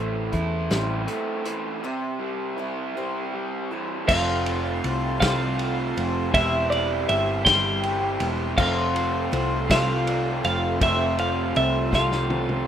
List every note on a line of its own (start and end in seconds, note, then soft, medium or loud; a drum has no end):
0.00 0.30 A1 medium
0.00 0.34 A2 medium
0.00 0.71 E3 medium
0.00 1.44 E3 medium
0.00 0.32 A3 medium
0.00 1.06 A3 medium
0.00 0.34 C4 medium
0.00 0.70 C4 medium
0.00 0.32 E4 medium
0.00 0.34 E4 medium
0.00 0.35 C5 medium
0.33 0.68 E2 medium
0.33 0.71 A3 medium
0.33 0.69 C4 medium
0.33 0.69 E4 medium
0.33 0.69 C5 medium
0.33 kick medium
0.33 closed hi-hat medium
0.70 1.06 A1 loud
0.70 1.47 A2 medium
0.70 1.47 E3 medium
0.70 1.46 A3 medium
0.70 1.46 C4 medium
0.70 1.45 E4 medium
0.70 1.45 C5 medium
0.70 snare loud
0.70 closed hi-hat medium
1.08 1.83 A3 medium
1.08 closed hi-hat soft
1.45 1.83 E3 medium
1.45 1.84 A3 soft
1.45 1.83 C4 soft
1.45 1.84 E4 soft
1.45 1.83 C5 medium
1.45 closed hi-hat medium
1.84 2.59 C3 medium
1.84 2.59 E3 medium
1.84 2.57 G3 medium
1.84 2.58 C4 medium
1.84 2.58 E4 medium
1.84 2.58 C5 medium
2.19 3.33 G3 medium
2.58 2.96 G3 medium
2.58 2.96 C4 medium
2.58 2.96 E4 medium
2.58 2.96 C5 medium
2.97 3.73 C3 medium
2.97 3.72 E3 medium
2.97 3.72 G3 medium
2.97 3.72 C4 medium
2.97 3.71 E4 medium
2.97 3.70 C5 medium
3.34 4.08 G3 medium
3.71 4.07 E3 medium
3.71 4.10 G3 soft
3.71 4.09 C4 soft
3.71 4.09 E4 medium
3.71 4.09 C5 soft
4.06 4.80 F1 medium
4.06 5.18 F2 medium
4.06 5.18 C3 medium
4.06 4.84 F3 medium
4.06 6.32 A4 medium
4.06 5.19 F5 medium
4.06 6.32 F5 medium
4.06 6.32 C6 medium
4.06 kick loud
4.06 crash loud
4.11 4.83 A3 medium
4.11 4.85 C4 medium
4.11 4.85 F4 medium
4.11 4.86 C5 medium
4.46 ride medium
4.84 5.19 C2 medium
4.84 5.22 A3 medium
4.84 5.22 C4 medium
4.84 5.22 F4 medium
4.84 5.22 C5 medium
4.84 ride medium
5.20 5.93 C2 medium
5.20 6.32 F2 medium
5.20 6.32 C3 medium
5.20 5.98 F3 medium
5.20 5.98 A3 medium
5.20 5.98 C4 medium
5.20 5.97 F4 medium
5.20 5.96 C5 medium
5.20 6.34 F5 medium
5.20 kick medium
5.20 snare loud
5.20 ride loud
5.59 ride medium
5.97 6.32 F1 medium
5.97 6.34 C4 soft
5.97 6.35 F4 soft
5.97 6.34 C5 soft
5.97 ride medium
6.32 7.05 E1 loud
6.32 7.43 E3 medium
6.32 7.07 G3 medium
6.32 7.09 C4 medium
6.32 7.09 E4 medium
6.32 8.56 G4 medium
6.32 7.10 C5 medium
6.32 8.56 E5 medium
6.32 6.69 E5 loud
6.32 12.67 C6 medium
6.32 kick loud
6.32 ride medium
6.70 7.08 D5 medium
6.70 ride medium
7.08 7.44 G1 medium
7.08 7.46 G3 medium
7.08 7.46 C4 medium
7.08 7.45 E4 medium
7.08 7.45 C5 medium
7.08 7.44 E5 medium
7.08 ride medium
7.45 8.17 G1 loud
7.45 8.22 E3 medium
7.45 8.21 G3 medium
7.45 8.23 C4 medium
7.45 8.21 E4 medium
7.45 8.21 C5 medium
7.45 8.26 G5 loud
7.45 kick medium
7.45 snare loud
7.45 ride loud
7.83 ride medium
8.20 8.55 E1 medium
8.20 8.58 C4 soft
8.20 8.59 E4 soft
8.20 8.59 C5 soft
8.20 ride medium
8.56 9.29 F1 medium
8.56 9.71 F2 loud
8.56 9.67 C3 loud
8.56 9.71 F3 medium
8.56 9.30 A3 medium
8.56 9.32 C4 medium
8.56 8.88 F4 medium
8.56 8.88 A4 medium
8.56 8.88 C5 medium
8.56 9.70 F5 loud
8.56 10.80 F5 medium
8.56 kick loud
8.56 crash medium
8.60 9.33 F4 medium
8.60 12.67 A4 medium
8.60 9.34 C5 medium
8.95 9.25 F4 medium
8.95 9.25 A4 medium
8.95 9.26 C5 medium
8.95 ride medium
9.32 9.67 C2 loud
9.32 9.70 A3 medium
9.32 9.69 C4 medium
9.32 9.93 F4 medium
9.32 9.69 F4 medium
9.32 9.93 A4 medium
9.32 9.93 C5 medium
9.32 9.69 C5 medium
9.32 ride medium
9.70 10.41 C2 medium
9.70 10.78 F2 medium
9.70 10.79 C3 medium
9.70 10.81 F3 medium
9.70 10.45 A3 medium
9.70 10.45 C4 medium
9.70 10.44 F4 medium
9.70 10.43 C5 medium
9.70 10.44 F5 medium
9.70 kick medium
9.70 snare loud
9.70 ride loud
10.06 10.37 F4 medium
10.06 10.37 A4 medium
10.06 10.37 D5 medium
10.06 ride medium
10.43 10.79 F1 medium
10.43 10.81 C4 soft
10.43 11.04 F4 medium
10.43 10.81 F4 medium
10.43 11.04 A4 medium
10.43 10.81 C5 medium
10.43 11.04 C5 medium
10.43 10.82 F5 medium
10.43 ride medium
10.79 11.52 F1 loud
10.79 11.90 F2 loud
10.79 11.91 C3 medium
10.79 11.56 F3 medium
10.79 11.53 A3 medium
10.79 11.55 C4 medium
10.79 11.56 F4 medium
10.79 12.67 C5 medium
10.79 11.56 C5 medium
10.79 11.19 E5 loud
10.79 kick loud
10.79 ride medium
11.19 11.49 F4 medium
11.19 11.49 A4 medium
11.19 11.50 C5 medium
11.19 11.54 F5 medium
11.19 ride medium
11.55 11.91 C2 medium
11.55 11.93 A3 medium
11.55 11.93 C4 medium
11.55 12.16 F4 medium
11.55 11.92 F4 medium
11.55 12.16 A4 medium
11.55 12.17 C5 medium
11.55 11.91 C5 medium
11.55 11.95 E5 medium
11.55 ride medium
11.93 12.64 C2 medium
11.93 12.67 F2 medium
11.93 12.67 C3 medium
11.93 12.67 F3 medium
11.93 12.67 A3 medium
11.93 12.67 C4 medium
11.93 12.67 F4 medium
11.93 12.65 C5 medium
11.93 12.67 F5 medium
11.93 kick medium
11.93 snare medium
12.12 snare medium
12.30 12.61 F4 medium
12.30 12.61 A4 medium
12.30 12.61 C5 medium
12.30 high tom medium
12.49 mid tom medium